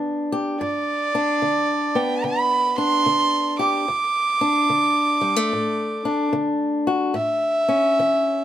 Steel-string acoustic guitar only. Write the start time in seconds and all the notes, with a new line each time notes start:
Already playing: D3 B3 D4
0.32 G4
0.61 G2
1.15 D4
1.42 D3
1.95 B3
2.24 D3
2.78 D4
3.06 D3
3.59 G4
3.88 D2
4.41 D4
4.69 D3
5.21 G3
5.36 A3
5.53 A2
6.05 D4
6.33 D3
6.87 F#4
7.14 A2
7.68 C#4
7.99 E3